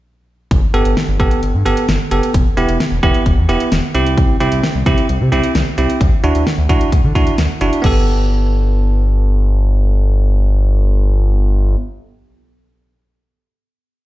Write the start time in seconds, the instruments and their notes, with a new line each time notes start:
0.51 analog synth bass G1, kick, closed hi-hat
0.74 analog synth bass G1, tine electric piano B3 G4 A4, closed hi-hat
0.85 analog synth bass G1, closed hi-hat
0.97 snare, closed hi-hat
1.08 analog synth bass G1
1.20 analog synth bass G1, tine electric piano B3 G4 A4, kick, closed hi-hat
1.31 closed hi-hat
1.43 analog synth bass G1, closed hi-hat
1.54 analog synth bass G2
1.66 analog synth bass G1, tine electric piano B3 G4 A4, closed hi-hat
1.77 closed hi-hat
1.88 analog synth bass G1, snare, closed hi-hat
2.11 analog synth bass F#1, tine electric piano B3 G4 A4, closed hi-hat
2.23 closed hi-hat
2.34 analog synth bass E1, kick, closed hi-hat
2.57 analog synth bass E1, tine electric piano B3 E4 G4, closed hi-hat
2.69 analog synth bass E1, closed hi-hat
2.80 snare, closed hi-hat
2.92 analog synth bass E1
3.03 analog synth bass E1, tine electric piano B3 E4 G4, kick, closed hi-hat
3.14 closed hi-hat
3.26 analog synth bass E1, kick, closed hi-hat
3.37 analog synth bass E2
3.49 analog synth bass E1, tine electric piano B3 E4 G4, closed hi-hat
3.60 closed hi-hat
3.72 analog synth bass E1, snare, closed hi-hat
3.95 analog synth bass C2, tine electric piano C4 E4 G4, closed hi-hat
4.06 closed hi-hat
4.18 kick, closed hi-hat
4.40 analog synth bass C2, tine electric piano C4 E4 G4, closed hi-hat
4.52 analog synth bass C2, closed hi-hat
4.64 snare, closed hi-hat
4.75 analog synth bass C2
4.86 analog synth bass C2, tine electric piano C4 E4 G4, kick, closed hi-hat
4.98 closed hi-hat
5.09 analog synth bass C2, closed hi-hat
5.21 analog synth bass C3
5.32 analog synth bass C2, tine electric piano C4 E4 G4, closed hi-hat
5.43 closed hi-hat
5.55 analog synth bass C2, snare, closed hi-hat
5.78 analog synth bass C2, tine electric piano C4 E4 G4, closed hi-hat
5.90 closed hi-hat
6.01 analog synth bass D2, kick, closed hi-hat
6.24 analog synth bass D2, tine electric piano D4 E4 F#4, closed hi-hat
6.35 analog synth bass D2, closed hi-hat
6.47 snare, closed hi-hat
6.58 analog synth bass D2
6.69 analog synth bass D2, tine electric piano D4 E4 F#4, kick, closed hi-hat
6.81 closed hi-hat
6.92 analog synth bass D2, kick, closed hi-hat
7.04 analog synth bass D3
7.15 analog synth bass D2, tine electric piano D4 E4 F#4, kick, closed hi-hat
7.27 closed hi-hat
7.38 analog synth bass D2, snare, closed hi-hat
7.61 analog synth bass F#1, tine electric piano D4 E4 F#4, closed hi-hat
7.73 closed hi-hat
7.82 analog synth bass G1, tine electric piano B3 G4, kick, crash
7.86 tine electric piano A4